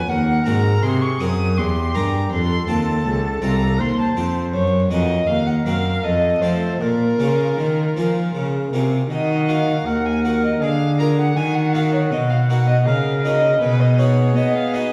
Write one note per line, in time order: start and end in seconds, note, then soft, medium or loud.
0.00 0.10 G#5 medium
0.09 0.43 D#2 medium
0.09 0.46 D#2 medium
0.09 0.85 A#4 medium
0.09 0.45 F#5 medium
0.45 0.79 G#2 soft
0.45 0.83 G#2 medium
0.45 0.99 C4 soft
0.45 0.99 F#4 soft
0.45 1.00 A#4 soft
0.45 0.84 A#5 medium
0.82 1.16 C3 soft
0.82 1.20 C3 medium
0.82 1.59 G#4 medium
0.82 1.03 C6 medium
1.01 1.21 C#6 medium
1.20 1.53 F#2 soft
1.20 1.59 F#2 medium
1.20 1.47 C4 soft
1.20 1.47 F#4 soft
1.20 1.47 A#4 soft
1.20 1.59 D#6 medium
1.57 1.91 E2 soft
1.57 1.96 E2 medium
1.57 2.31 G4 medium
1.57 1.96 C6 medium
1.94 2.28 G2 soft
1.94 2.31 G2 medium
1.94 2.21 C#4 soft
1.94 2.21 G4 soft
1.94 2.22 A#4 soft
1.94 2.31 A#5 medium
2.31 2.64 F2 soft
2.31 2.68 F2 medium
2.31 3.81 A4 medium
2.31 2.68 C6 medium
2.67 3.01 D#2 soft
2.67 3.04 D#2 medium
2.67 2.94 C4 soft
2.67 3.21 F4 soft
2.67 3.22 C5 soft
2.67 3.41 A5 medium
3.05 3.39 C#2 soft
3.05 3.42 C#2 medium
3.42 3.76 C2 soft
3.42 3.81 C2 medium
3.42 3.69 C4 soft
3.42 3.96 F4 soft
3.42 3.96 C5 soft
3.42 3.82 A#5 medium
3.79 4.16 D#2 medium
3.79 4.13 D#2 soft
3.79 5.00 C5 medium
3.79 3.98 C6 medium
3.99 4.17 A5 medium
4.17 4.50 F2 soft
4.17 4.55 F2 medium
4.17 4.43 C4 soft
4.17 4.44 F4 soft
4.17 4.44 C5 soft
4.53 4.90 F#2 medium
4.53 4.87 F#2 soft
4.53 4.88 C#5 medium
4.90 5.24 F2 soft
4.90 5.27 F2 medium
4.90 5.18 A#3 soft
4.90 5.18 C#4 soft
4.90 5.18 F#4 soft
4.90 5.29 D#5 medium
5.27 5.62 D#2 soft
5.27 5.65 D#2 medium
5.27 6.05 A#4 medium
5.27 5.46 F5 medium
5.46 5.54 F#5 medium
5.65 6.03 F#2 medium
5.65 6.00 F#2 soft
5.65 5.93 A#3 soft
5.65 5.94 C4 soft
5.65 5.94 F#4 soft
5.65 6.05 F5 medium
6.03 6.38 F2 soft
6.03 6.41 F2 medium
6.03 6.83 A4 soft
6.03 6.43 D#5 medium
6.41 6.80 F3 soft
6.41 6.77 F3 soft
6.41 6.70 A3 soft
6.41 6.70 C4 soft
6.41 6.70 F4 soft
6.41 6.80 C5 medium
6.81 7.19 A#2 medium
6.81 7.16 A#2 soft
6.81 8.79 F4 medium
6.81 8.69 A#4 medium
7.19 7.57 C#3 medium
7.19 7.54 C#3 soft
7.19 7.75 A#3 soft
7.19 7.75 C#4 soft
7.19 7.76 F4 soft
7.58 7.96 D#3 medium
7.58 7.93 D#3 soft
7.97 8.31 F3 soft
7.97 8.34 F3 medium
7.97 8.52 A#3 soft
7.97 8.52 C#4 soft
7.97 8.52 F4 soft
8.35 8.72 C#3 soft
8.35 8.69 C#3 soft
8.72 9.10 C3 soft
8.72 9.07 C3 soft
8.72 9.00 A#3 soft
8.72 9.01 C#4 soft
8.72 9.01 F4 soft
9.10 9.82 D#3 soft
9.10 9.83 D#3 medium
9.10 9.87 F#4 medium
9.10 9.50 D#5 medium
9.49 10.03 A#3 soft
9.49 10.03 F#4 soft
9.49 9.88 F5 medium
9.86 10.60 D#2 medium
9.86 10.58 D#2 soft
9.86 10.63 A#4 medium
9.86 10.07 F#5 medium
10.05 10.23 G#5 medium
10.24 10.52 A#3 soft
10.24 10.52 F#4 soft
10.24 10.42 F#5 medium
10.43 10.61 D#5 medium
10.61 11.35 D3 medium
10.61 11.33 D3 soft
10.61 11.35 G#4 medium
10.61 10.98 F5 medium
10.99 11.27 A#3 soft
10.99 11.27 F4 soft
10.99 11.27 A#4 soft
10.99 11.06 A#5 medium
11.19 11.38 F#5 medium
11.36 12.13 D#3 medium
11.36 12.08 D#3 soft
11.36 12.88 F#4 medium
11.36 11.56 G#5 medium
11.54 11.74 F#5 medium
11.73 12.01 A#3 soft
11.73 12.29 D#4 soft
11.73 12.29 F#4 soft
11.73 11.92 F5 medium
11.92 12.00 C#5 medium
12.11 12.88 B2 medium
12.11 12.83 B2 soft
12.11 12.18 D#5 medium
12.29 12.37 F5 medium
12.49 12.77 A#3 soft
12.49 13.04 D#4 soft
12.49 13.04 F#4 soft
12.49 12.67 F#5 medium
12.68 12.75 D#5 medium
12.86 13.61 C#3 medium
12.86 13.58 C#3 soft
12.86 13.61 A#4 medium
12.86 13.23 F5 medium
13.24 13.52 A#3 soft
13.24 13.52 D#4 soft
13.24 13.52 F#4 soft
13.24 13.61 D#5 medium
13.61 14.35 B2 medium
13.61 14.32 B2 soft
13.61 14.93 G#4 medium
13.61 13.81 B4 medium
13.79 14.00 D#5 medium
13.98 14.36 B3 soft
13.98 14.53 D#4 soft
13.98 14.53 F#4 soft
13.98 14.37 C#5 medium
14.35 14.93 B3 medium
14.35 14.73 B3 soft
14.35 14.55 D#5 medium
14.55 14.75 F5 medium
14.73 14.93 B3 soft
14.73 14.93 D#4 soft
14.73 14.93 F#4 soft
14.73 14.93 D#5 medium